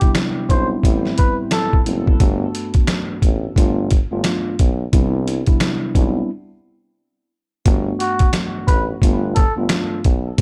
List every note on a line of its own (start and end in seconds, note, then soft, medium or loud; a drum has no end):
0.00 0.46 C3 medium
0.00 0.46 G3 medium
0.00 0.47 B3 medium
0.00 0.47 D4 medium
0.00 0.47 E4 loud
0.00 0.13 G4 medium
0.00 kick loud
0.00 closed hi-hat medium
0.15 snare loud
0.15 snare medium
0.15 closed hi-hat medium
0.49 0.75 B1 medium
0.49 0.82 G3 medium
0.49 0.83 B3 medium
0.49 0.83 C4 loud
0.49 0.84 D4 medium
0.49 0.84 E4 loud
0.49 0.69 C5 medium
0.49 kick medium
0.49 closed hi-hat medium
0.83 1.09 A1 loud
0.83 1.79 A2 medium
0.83 1.79 G3 medium
0.83 1.80 B3 medium
0.83 1.80 C4 medium
0.83 1.80 E4 loud
0.83 kick medium
0.83 closed hi-hat medium
1.05 snare soft
1.18 1.37 B4 medium
1.18 kick medium
1.18 closed hi-hat medium
1.51 1.83 A4 medium
1.51 snare loud
1.51 snare medium
1.51 closed hi-hat medium
1.73 kick medium
1.85 2.12 F#1 medium
1.85 2.17 A2 medium
1.85 2.18 G3 medium
1.85 2.18 B3 medium
1.85 2.18 C4 medium
1.85 2.18 E4 medium
1.85 closed hi-hat medium
2.07 kick medium
2.20 2.46 G1 loud
2.20 3.55 G2 medium
2.20 3.56 A3 medium
2.20 3.56 B3 medium
2.20 3.57 D4 medium
2.20 3.57 F#4 medium
2.20 kick loud
2.20 closed hi-hat medium
2.55 closed hi-hat medium
2.74 kick loud
2.74 closed hi-hat medium
2.87 snare loud
2.87 snare medium
2.87 closed hi-hat medium
3.09 3.14 A1 soft
3.22 3.48 A1 medium
3.22 kick medium
3.22 closed hi-hat medium
3.56 3.98 G1 loud
3.56 3.88 G2 medium
3.56 3.89 A3 medium
3.56 3.89 B3 medium
3.56 3.89 D4 medium
3.56 3.89 F4 loud
3.56 kick loud
3.56 closed hi-hat loud
3.91 kick medium
3.91 closed hi-hat medium
4.11 4.21 G1 medium
4.11 4.55 G2 medium
4.11 4.55 A3 medium
4.11 4.56 B3 medium
4.11 4.56 D4 medium
4.11 4.56 F4 loud
4.24 snare loud
4.24 snare medium
4.24 closed hi-hat medium
4.59 4.85 B1 medium
4.59 kick medium
4.59 closed hi-hat medium
4.92 5.44 C2 loud
4.92 5.42 C3 medium
4.92 5.43 G3 medium
4.92 5.43 B3 medium
4.92 5.43 D4 medium
4.92 5.43 E4 loud
4.92 kick loud
4.92 closed hi-hat medium
5.28 closed hi-hat medium
5.46 5.92 C3 medium
5.46 5.92 G3 medium
5.46 5.92 B3 medium
5.46 5.92 D4 medium
5.46 5.93 E4 loud
5.46 kick loud
5.46 closed hi-hat medium
5.60 snare loud
5.60 snare medium
5.60 closed hi-hat medium
5.94 6.21 B1 medium
5.94 6.29 G3 medium
5.94 6.29 B3 medium
5.94 6.29 C4 medium
5.94 6.30 D4 medium
5.94 6.30 E4 loud
5.94 kick medium
5.94 closed hi-hat medium
7.65 7.91 G1 loud
7.65 9.01 G2 loud
7.65 9.01 A3 medium
7.65 9.02 B3 medium
7.65 9.02 D4 medium
7.65 9.03 F#4 medium
7.65 kick loud
7.65 closed hi-hat medium
8.00 8.31 F#4 medium
8.00 closed hi-hat medium
8.19 kick loud
8.19 closed hi-hat medium
8.33 snare loud
8.33 snare medium
8.33 closed hi-hat medium
8.55 8.60 A1 soft
8.67 8.93 A1 medium
8.67 8.86 B4 medium
8.67 kick medium
8.67 closed hi-hat medium
9.02 9.43 G1 loud
9.02 9.34 G2 medium
9.02 9.34 A3 medium
9.02 9.34 B3 medium
9.02 9.35 D4 medium
9.02 9.35 F4 loud
9.02 kick medium
9.02 closed hi-hat medium
9.35 9.54 A4 medium
9.35 kick medium
9.35 closed hi-hat medium
9.56 9.67 G1 medium
9.56 10.01 G2 medium
9.56 10.01 A3 medium
9.56 10.01 B3 medium
9.56 10.01 D4 medium
9.56 10.02 F4 loud
9.69 snare loud
9.69 snare medium
9.69 closed hi-hat medium
10.04 10.30 B1 medium
10.04 kick medium
10.04 closed hi-hat medium
10.37 10.41 C3 medium
10.37 10.41 G3 medium
10.37 10.41 B3 medium
10.37 closed hi-hat medium